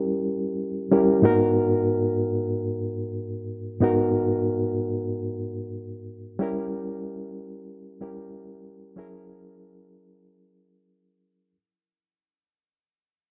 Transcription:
0.00 0.87 G3 medium
0.00 0.88 C#4 medium
0.00 0.88 E4 medium
0.00 0.88 G4 medium
0.00 0.89 A#4 medium
0.91 1.24 G3 medium
0.91 1.24 C#4 medium
0.91 1.24 E4 medium
0.91 1.24 G4 medium
0.91 1.24 A#4 medium
1.22 3.77 G#2 medium
1.22 1.30 A#3 medium
1.22 3.78 D#4 medium
1.22 3.78 F#4 medium
1.22 3.79 A#4 medium
1.30 3.80 B3 medium
3.80 6.35 G#2 medium
3.80 6.36 B3 medium
3.80 6.36 D#4 medium
3.80 6.36 F#4 medium
3.80 6.37 A#4 medium
6.39 7.97 G3 medium
6.39 7.98 C#4 medium
6.39 7.98 E4 medium
6.39 7.98 G4 medium
6.39 7.99 A#4 medium
8.01 8.97 G3 medium
8.01 8.96 C#4 soft
8.01 8.97 E4 medium
8.01 8.98 G4 medium
8.01 8.98 A#4 medium
8.96 11.51 F#3 medium
8.96 11.51 C#4 medium
8.96 11.52 E4 medium
8.96 11.52 G#4 medium
8.96 11.52 A#4 medium

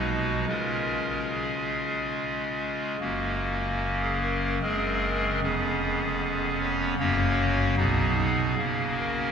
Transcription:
0.00 0.46 B1 medium
0.00 0.46 B2 medium
0.00 0.46 G#3 soft
0.00 0.46 D#4 soft
0.00 0.46 F#4 soft
0.00 0.45 B4 loud
0.48 2.97 C#3 soft
0.48 2.97 G#3 soft
0.48 2.97 C#4 soft
0.48 2.97 F4 soft
0.48 1.29 A#4 medium
1.32 2.14 G#4 medium
3.00 4.59 F#1 medium
3.00 4.59 F#2 medium
3.00 4.59 A#3 soft
3.00 4.59 C#4 soft
3.00 3.99 F#4 medium
4.02 4.19 G#4 medium
4.21 4.56 A#4 loud
4.62 5.40 F#1 medium
4.62 5.41 F#2 medium
4.62 5.40 G#3 medium
4.62 5.40 C4 medium
4.62 5.41 G#4 soft
4.62 5.41 A#4 loud
5.43 6.95 F1 medium
5.43 6.96 F2 medium
5.43 6.95 B3 soft
5.43 6.95 C#4 soft
5.43 6.58 G#4 loud
6.61 6.94 C#5 loud
6.99 7.75 F#1 medium
6.99 7.75 F#2 medium
6.99 7.75 A#3 medium
6.99 7.75 C#4 medium
6.99 7.75 F#4 medium
6.99 7.75 C#5 loud
7.77 8.55 B1 medium
7.77 8.55 B2 medium
7.77 8.55 B3 medium
7.77 8.55 D#4 medium
7.77 8.55 F#4 medium
7.77 8.94 G#4 loud
8.57 9.32 C#3 medium
8.57 9.32 A#3 medium
8.57 9.32 C#4 medium
8.57 9.32 F#4 medium
8.98 9.32 A#4 loud

